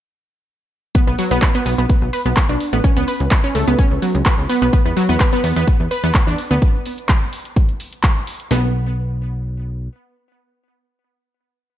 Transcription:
0.95 B3 B4, kick, closed hi-hat
1.07 B1 B3 B4
1.19 F#3 F#4, open hi-hat
1.31 B1 B3 B4, closed hi-hat
1.42 B4 B5, kick, clap, closed hi-hat
1.55 B3 B4
1.66 B1 B3 B4, open hi-hat
1.78 B1 B3 B4, closed hi-hat
1.90 kick, closed hi-hat
2.02 B1
2.13 B4 B5, open hi-hat
2.26 B1 B3 B4, closed hi-hat
2.36 kick, clap, closed hi-hat
2.49 B1 D4 D5
2.60 open hi-hat
2.73 A1 B3 B4, closed hi-hat
2.84 C#4 C#5, kick, closed hi-hat
2.97 C#2 B3 B4
3.08 B4 B5, open hi-hat
3.20 C#2, closed hi-hat
3.31 kick, clap, closed hi-hat
3.44 C#4 C#5
3.55 C#2 A3 A4, open hi-hat
3.67 C#2 B3 B4, closed hi-hat
3.79 C#4 C#5, kick, closed hi-hat
3.91 C#2
4.02 F#3 F#4, open hi-hat
4.15 C#2, closed hi-hat
4.26 B4 B5, kick, clap, closed hi-hat
4.38 C#2
4.49 B3 B4, open hi-hat
4.62 B1 B3 B4, closed hi-hat
4.73 B3 B4, kick, closed hi-hat
4.86 E2 B3 B4
4.97 F#3 F#4, open hi-hat
5.09 E2 B3 B4, closed hi-hat
5.20 B4 B5, kick, clap, closed hi-hat
5.33 B3 B4
5.44 E2 B3 B4, open hi-hat
5.56 E2 B3 B4, closed hi-hat
5.67 kick, closed hi-hat
5.80 E2
5.91 B4 B5, open hi-hat
6.04 E2 B3 B4, closed hi-hat
6.14 kick, clap, closed hi-hat
6.27 E2 D4 D5
6.38 open hi-hat
6.51 D2 B3 B4, closed hi-hat
6.62 kick, closed hi-hat
6.86 open hi-hat
6.98 closed hi-hat
7.09 kick, clap, closed hi-hat
7.33 open hi-hat
7.45 closed hi-hat
7.56 kick, closed hi-hat
7.69 closed hi-hat
7.80 open hi-hat
7.93 closed hi-hat
8.03 kick, clap, closed hi-hat
8.27 open hi-hat
8.40 closed hi-hat
8.51 B1 B3, snare

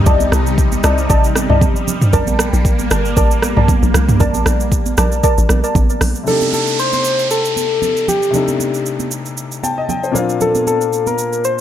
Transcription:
Already playing: C3 G3 D#4
0.06 C2 D5 D#5 A5, kick, low conga, shaker
0.20 high conga, shaker
0.32 C2, cross-stick, high conga, shaker
0.47 shaker
0.58 kick, shaker
0.72 high conga, shaker
0.83 C2 D5 D#5 A5, cross-stick, shaker
0.98 shaker
1.09 A1 D5 D#5 A5, kick, shaker
1.24 shaker
1.35 cross-stick, high conga, shaker
1.50 C2 D5 D#5 A5, mid tom
1.61 kick, high conga, low conga, shaker
1.76 shaker
1.87 A#3, high conga, low conga, shaker
2.02 mid tom, shaker
2.13 A#1 A#4 D5 A5, kick, low conga, shaker
2.27 high conga, shaker
2.39 cross-stick, high conga, shaker
2.53 A#1, shaker
2.65 kick, shaker
2.79 high conga, shaker
2.91 G1 A#4 D5 A5, cross-stick, shaker
3.05 shaker
3.16 A1 A#4 D5 A5, kick, shaker
3.31 shaker
3.42 cross-stick, high conga, shaker
3.57 A#1 A#4 D5 A5, mid tom
3.68 kick, high conga, low conga, shaker
3.83 A#1, shaker
3.94 C2, cross-stick, high conga, low conga, shaker
4.09 mid tom, shaker
4.20 A#1 A#4 D5 A5, kick, low conga, shaker
4.34 high conga, shaker
4.46 A#1, cross-stick, high conga, shaker
4.60 shaker
4.72 kick, shaker
4.86 high conga, shaker
4.97 A#1 A#4 D5 A5, cross-stick, low conga, shaker
5.12 shaker
5.23 A#4 D5 A5, kick, shaker
5.38 A1, shaker
5.49 A#1, cross-stick, high conga, shaker
5.63 A#4 D5 A5, shaker
5.75 A1, kick, high conga, low conga, shaker
5.90 shaker
6.01 A#1, cross-stick, open hi-hat, high conga, low conga, shaker
6.15 shaker
6.23 C3 A3 D4, downlifter, low conga, shaker
6.28 D#4 G4 A4
6.41 high conga, shaker
6.53 A4, high conga, shaker
6.67 shaker
6.79 C5, shaker
6.93 C5, high conga, shaker
7.04 shaker
7.19 shaker
7.31 A4, shaker
7.45 shaker
7.56 high conga, shaker
7.82 high conga, low conga, shaker
7.97 shaker
8.08 G4, high conga, low conga, shaker
8.23 shaker
8.31 C3 A3 D4, low conga, shaker
8.36 D#4 A4
8.48 high conga, shaker
8.60 high conga, shaker
8.74 shaker
8.86 shaker
9.00 high conga, shaker
9.11 shaker
9.26 shaker
9.37 shaker
9.52 shaker
9.63 G5 A5, high conga, shaker
9.78 D#5
9.89 G5, high conga, low conga, shaker
10.03 C5, shaker
10.12 A#2 A#3 C4 F5, high conga, low conga, shaker
10.17 D4 F4
10.29 shaker
10.41 A4, low conga, shaker
10.55 high conga, shaker
10.67 A4, high conga, shaker
10.81 shaker
10.93 shaker
11.07 A#4, high conga, shaker
11.18 shaker
11.33 shaker
11.44 C5, shaker

